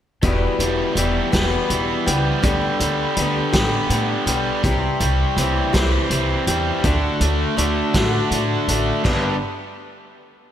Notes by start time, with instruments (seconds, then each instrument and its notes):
0.22 upright bass E1, steel-string acoustic guitar E2 B2 E3 G3 B3 G4, kick, closed hi-hat
0.59 upright bass E1, overdriven electric guitar G3, closed hi-hat
0.95 upright bass E1, steel-string acoustic guitar E3 G3 B3 G4, closed hi-hat
1.32 upright bass E1, steel-string acoustic guitar E2 B2 E3 G3 B3 G4, kick, snare, closed hi-hat
1.70 upright bass E1, overdriven electric guitar E3, closed hi-hat
2.06 upright bass C#2, steel-string acoustic guitar E3 G3 B3 G4, closed hi-hat
2.43 upright bass D2, steel-string acoustic guitar D3 G3 B3 G4, kick, closed hi-hat
2.80 upright bass D2, overdriven electric guitar G3, closed hi-hat
3.17 upright bass D2, steel-string acoustic guitar D3 G3 B3 G4, closed hi-hat
3.53 upright bass A1, steel-string acoustic guitar D3 G3 B3 G4, kick, snare, closed hi-hat
3.89 upright bass A2, overdriven electric guitar D3, closed hi-hat
4.26 upright bass B1, steel-string acoustic guitar G3 B3 G4, closed hi-hat
4.63 upright bass C2, steel-string acoustic guitar C3 E3 G3 C4 G4, kick, closed hi-hat
5.00 upright bass C2, overdriven electric guitar G3, closed hi-hat
5.37 upright bass C2, steel-string acoustic guitar E3 G3 C4 G4, closed hi-hat
5.73 upright bass C2, steel-string acoustic guitar C3 E3 G3 C4 G4, kick, snare, closed hi-hat
6.10 upright bass C2, overdriven electric guitar E3, closed hi-hat
6.47 upright bass E2, steel-string acoustic guitar G3 C4 G4, closed hi-hat
6.84 upright bass D2, steel-string acoustic guitar D3 A3 D4 F#4, kick, closed hi-hat
7.21 upright bass D2, overdriven electric guitar A3, closed hi-hat
7.57 upright bass D2, steel-string acoustic guitar D3 A3 D4 F#4, closed hi-hat
7.94 upright bass A1, steel-string acoustic guitar D3 A3 D4 F#4, kick, snare, closed hi-hat
8.31 upright bass A2, overdriven electric guitar D3, closed hi-hat
8.68 upright bass A1, steel-string acoustic guitar A3 D4 F#4, closed hi-hat
9.03 upright bass G1, overdriven electric guitar G2 D3 G4, steel-string acoustic guitar G3 B3 D4 A4, kick, crash